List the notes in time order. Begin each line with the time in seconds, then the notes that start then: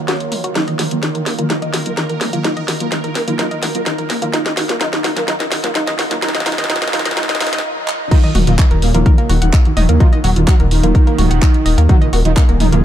Already playing: D#3 F#3 A#3 F4 C#5
0.08 F#4, snare, closed hi-hat
0.20 closed hi-hat
0.32 A#4, open hi-hat, mid tom
0.44 F#4, closed hi-hat
0.55 D#3 F#3 D#4 F4 A#4, snare, closed hi-hat
0.68 D#3 D#5, closed hi-hat
0.79 D#3 F#4, snare, open hi-hat, mid tom
0.91 D#3 F#3 A#3 F4, closed hi-hat
1.03 D#3 D#4, snare, closed hi-hat
1.15 D#3 A#4, closed hi-hat
1.26 A#3, snare, open hi-hat
1.39 D#3 F#3 A#3 F4, closed hi-hat
1.50 D#3 F#3 D#4 F4, snare, closed hi-hat, mid tom
1.62 D#3 D#5, closed hi-hat
1.74 D#3 F#4, snare, open hi-hat
1.86 D#3 F#3 A#3 F4, closed hi-hat
1.97 D#3 D#4, snare, closed hi-hat
2.09 D#3 A#4, closed hi-hat
2.21 A#3, snare, open hi-hat, mid tom
2.33 D#3 F#3 A#3 F4, closed hi-hat
2.44 D#3 F#3 D#4 F4, snare, closed hi-hat
2.57 D#3 D#5, closed hi-hat
2.68 D#3 F#4, snare, open hi-hat
2.80 D#3 F#3 A#3 F4, closed hi-hat
2.92 D#3 D#4, snare, closed hi-hat, mid tom
3.04 D#3 A#4, closed hi-hat
3.15 A#3, snare, open hi-hat
3.27 D#3 F#3 A#3 F4, closed hi-hat
3.39 D#3 F#3 D#4 F4, snare, closed hi-hat
3.51 D#3 D#5, closed hi-hat
3.63 D#3 F#4, snare, open hi-hat, mid tom
3.75 D#3 F#3 A#3 F4, closed hi-hat
3.86 D#3 D#4, snare, closed hi-hat
3.98 D#3 A#4, closed hi-hat
4.10 A#3, snare, open hi-hat
4.22 D#3 F#3 A#3 F4, closed hi-hat
4.33 D#3 F#3 D#4 F4, snare, closed hi-hat, mid tom
4.46 D#3 D#5, snare, closed hi-hat
4.57 D#3 F#4, snare, open hi-hat
4.69 D#3 F#3 A#3 F4, snare, closed hi-hat
4.81 D#3 F#3 D#4 F4, snare, closed hi-hat
4.93 D#3 D#5, snare, closed hi-hat
5.04 D#3 F#4, snare, open hi-hat, mid tom
5.16 D#3 F#3 A#3 F4, snare, closed hi-hat
5.28 D#3 F#3 D#4 F4, snare, closed hi-hat
5.40 D#3 D#5, snare, closed hi-hat
5.51 D#3 F#4, snare, open hi-hat
5.64 D#3 F#3 A#3 F4, snare, closed hi-hat
5.75 D#3 F#3 D#4 F4, snare, closed hi-hat, mid tom
5.87 D#3 D#5, snare, closed hi-hat
5.99 D#3 F#4, snare, open hi-hat
6.11 D#3 F#3 A#3 F4, snare, closed hi-hat
6.22 D#3 F#3 D#4 F4, snare, closed hi-hat
6.28 snare
6.35 D#3 D#5, snare, closed hi-hat
6.40 snare
6.46 D#3 F#3 D#4 F4, snare, open hi-hat, mid tom
6.52 snare
6.58 D#3 D#5, snare, closed hi-hat
6.64 snare
6.70 D#3 F#3 D#4 F4, snare, closed hi-hat
6.76 snare
6.82 D#3 D#5, snare, closed hi-hat
6.88 snare
6.93 D#3 F#3 D#4 F4, snare, open hi-hat
6.99 snare
7.05 D#3 D#5, snare, closed hi-hat
7.11 snare
7.17 D#3 F#3 D#4 F4, snare, closed hi-hat, mid tom
7.23 snare
7.29 D#3 D#5, snare, closed hi-hat
7.35 snare
7.40 D#3 F#3 D#4 F4, snare, open hi-hat
7.47 snare
7.53 D#3 D#5, snare, closed hi-hat
7.58 snare
7.88 clap
8.11 D#3 F#3 A#3 D#4 F4 D#5, kick, closed hi-hat, crash
8.24 D#2 D#3 D#5 D#6, closed hi-hat
8.35 D#1 D#2 D#3 F#4 F#5, open hi-hat, mid tom
8.47 D#1 A#2 D#3 F#3 A#3 F4, closed hi-hat
8.59 D#2 D#3 D#4 D#5, kick, clap, closed hi-hat
8.71 D#1 D#2 D#3 A#4 A#5, closed hi-hat
8.82 D#1 A#2 A#3, open hi-hat
8.94 D#1 D#2 D#3 F#3 A#3 F4 A#4, closed hi-hat
9.06 D#3 A#4 A#5, kick, closed hi-hat, mid tom
9.18 A#3 A#4, closed hi-hat
9.29 D#1 D#2 D#3 F#4 F#5, open hi-hat
9.42 D#1 D#2 D#3 F#5 F#6, closed hi-hat
9.53 D#4 D#5, kick, clap, closed hi-hat
9.65 D#2 D#3, closed hi-hat
9.77 D#1 D#3 D#4 D#5 D#6, open hi-hat, mid tom
9.89 D#2 D#3 A#3 A#4, closed hi-hat
10.00 D#3 F3 F#3 D#4 F4 D#5, kick, closed hi-hat
10.13 D#2 D#3 D#5 D#6, closed hi-hat
10.24 D#1 F#3 F#4 F#5, open hi-hat
10.36 D#1 D#2 D#3 F#3 F4, closed hi-hat
10.48 F#3 D#4 F#4 D#5, kick, clap, closed hi-hat, mid tom
10.60 D#1 D#2 D#3 A#4 A#5, closed hi-hat
10.71 D#1 D#3 D#4, open hi-hat
10.83 D#1 D#3 F#3 A#3 F4 A#4, closed hi-hat
10.95 A#4 A#5, kick, closed hi-hat
11.07 A#3 A#4, closed hi-hat
11.18 D#1 F#4 F#5, open hi-hat, mid tom
11.31 D#1 F#5 F#6, closed hi-hat
11.42 D#4 D#5, kick, clap, closed hi-hat
11.54 closed hi-hat
11.66 D#1 D#5 D#6, open hi-hat
11.78 D#2 A#3 A#4, closed hi-hat
11.89 D#3 F#3 D#4 F4 F#4 G#4 D#5, kick, closed hi-hat, mid tom
12.01 A#2 A#3 D#5 D#6, closed hi-hat
12.13 D#1 A#2 A#3 F#4 F#5, open hi-hat
12.25 D#1 D#3 F#3 D#4 F4, closed hi-hat
12.37 A#2 A#3 D#4 D#5, kick, clap, closed hi-hat
12.49 D#1 A#2 A#3 A#4 A#5, closed hi-hat
12.60 D#1 D#3 D#4, open hi-hat, mid tom
12.72 D#1 A#2 D#3 F#3 A#3 F4 A#4, closed hi-hat